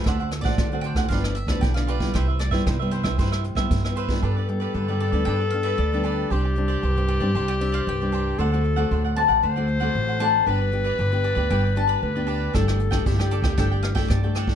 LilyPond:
<<
  \new Staff \with { instrumentName = "Mandolin" } { \time 4/4 \key g \mixolydian \tempo 4 = 115 e''8. d''8. g''8 f''8 e''8 g''16 f''8. | e''8 d''4 c''4. r4 | r4. d''8 g''8 f''16 e''16 d''8. r16 | r4. d''8. g''16 e''16 f''16 g''8. r16 |
r4. a''8 r4. a''8 | r4. d''8 g''8 a''16 b''8. r8 | r4. d''8 g''8 f''16 e''16 d''8. r16 | }
  \new Staff \with { instrumentName = "Cavaquinho" } { \time 4/4 \key g \mixolydian <d' c'' d'' fis''>16 <c'' d'' fis''>16 r16 <c'' d'' fis''>16 <d' c'' d'' fis''>16 <c'' d'' fis''>16 <d' c'' d'' fis''>16 <c'' d'' fis''>16 <f' g' b' d''>16 <g' b' d''>16 r16 <g' b' d''>8 <g' b' d''>16 <f' g' b' d''>8 | <g' b' c'' e''>16 <b' c'' e''>16 r16 <b' c'' e''>16 <g' b' c'' e''>16 <b' c'' e''>16 <g' b' c'' e''>16 <b' c'' e''>16 <g' b' c'' e''>16 <b' c'' e''>16 r16 <b' c'' e''>8 <b' c'' e''>16 <g' b' c'' e''>8 | <d' g' b' d''>16 <g' b' d''>16 r16 <g' b' d''>16 <d' g' b' d''>16 <g' b' d''>16 <d' g' b' d''>16 <g' b' d''>16 <d' g' b' d''>16 <g' b' d''>16 r16 <g' b' d''>8 <g' b' d''>16 <d' g' b' d''>8 | <d' g' c'' d''>16 <g' c'' d''>16 r16 <g' c'' d''>16 <d' g' c'' d''>16 <g' c'' d''>16 <d' g' c'' d''>16 <g' c'' d''>16 <d' g' c'' d''>16 <g' c'' d''>16 r16 <g' c'' d''>8 <g' c'' d''>16 <d' g' c'' d''>8 |
<d' c'' d'' fis''>16 <c'' d'' fis''>16 r16 <c'' d'' fis''>16 <d' c'' d'' fis''>16 <c'' d'' fis''>16 <d' c'' d'' fis''>16 <c'' d'' fis''>16 <d' c'' d'' fis''>16 <c'' d'' fis''>16 r16 <c'' d'' fis''>8 <c'' d'' fis''>16 <d' c'' d'' fis''>8 | <d' g' b' d''>16 <g' b' d''>16 r16 <g' b' d''>16 <d' g' b' d''>16 <g' b' d''>16 <d' g' b' d''>16 <g' b' d''>16 <d' g' b' d''>16 <g' b' d''>16 r16 <g' b' d''>8 <g' b' d''>16 <d' g' b' d''>8 | <d' a' d'' g''>16 <a' d'' g''>16 r16 <a' d'' g''>16 <d' a' d'' g''>16 <a' d'' g''>16 <d' a' d'' g''>16 <a' d'' g''>16 <d' a' d'' g''>16 <a' d'' g''>16 r16 <a' d'' g''>8 <a' d'' g''>16 <d' a' d'' g''>8 | }
  \new Staff \with { instrumentName = "Clarinet" } { \time 4/4 \key g \mixolydian r1 | r1 | a'1 | g'1 |
a'4. r8 c''2 | b'2. b'4 | a'4 g'2~ g'8 r8 | }
  \new Staff \with { instrumentName = "Nylon-string guitar" } { \time 4/4 \key g \mixolydian << { <a c' fis'>8. <a c' fis'>8 <a c' fis'>8. <f b d'>8 r16 <f b d'>8 <f b d'>8 <g b e'>16~ | <g b e'>8. <g b e'>8 <g b e'>8. <g e'>8. <g b e'>8 <g b e'>8 <g b d'>16~ | <g b d'>8 <g b d'>8. <g b d'>8 <g b d'>16 <g b d'>16 r16 <g b d'>8 r16 <g b d'>8. | <g c' d'>8 <g c' d'>8 r16 <g c' d'>8 <g c' d'>16 <g c' d'>8 <g c' d'>8. <g c' d'>8. |
<a c' fis'>16 <a c' fis'>8 <a c' fis'>8. <a c' fis'>8 r16 <a c' fis'>8 <a c' fis'>8. <a c' fis'>16 r16 | <b d' g'>8 <b d' g'>8 r16 <b d' g'>8 <b d' g'>16 <b d' g'>8 <b d' g'>8. <b d' g'>8. | <a d' g'>8. <a d' g'>8 <a d' g'>8. <a d' g'>8. <a d' g'>8 <a d' g'>8. | } \\ { d4 a,4 g,4 d4 | c4 g,4 c4 g,4 | g,4 d4 g,4 d4 | c4 g,4 c4 g,4 |
d4 a,4 d4 a,4 | g4 d4 g4 d4 | g4 d4 g4 d4 | } >> }
  \new Staff \with { instrumentName = "Upright bass" } { \clef bass \time 4/4 \key g \mixolydian d,8. a,,16 d8. d,16 g,,8. d,16 b,,4 | c,8. g,16 c8. c,16 g,8. g,16 g,4 | g,4 g,8. d,16 g,4 d,4 | c,4 c,8. g,16 c,4 c,4 |
d,4 d,8. a,,16 d,4 a,,4 | g,,4 g,,8. d,16 g,,4 d,4 | g,,4 g,,8. d,16 g,,4 g,4 | }
  \new DrumStaff \with { instrumentName = "Drums" } \drummode { \time 4/4 <hh bd ss>16 hh16 <hh ss>16 <hh bd>16 <hh bd ss>8 hh16 <hh bd ss>16 <hh bd>16 <hh ss>16 hh16 <bd ss>16 <hh bd>16 ss16 hh16 <hh bd>16 | <hh bd ss>8 <hh ss>16 bd16 <hh bd ss>8 hh16 <bd ss>16 <hh bd>16 <hh ss>16 hh16 <hh bd ss>16 <hh bd>16 ss16 hh16 <hh bd>16 | r4 r4 r4 r4 | r4 r4 r4 r4 |
r4 r4 r4 r4 | r4 r4 r4 r4 | <hh bd ss>16 <hh ss>16 hh16 <hh bd ss>16 <hh bd>16 ss16 hh16 <bd ss>16 <hh bd ss>8 <hh ss>16 <hh bd>16 <hh bd ss>8 <hh ss>16 bd16 | }
>>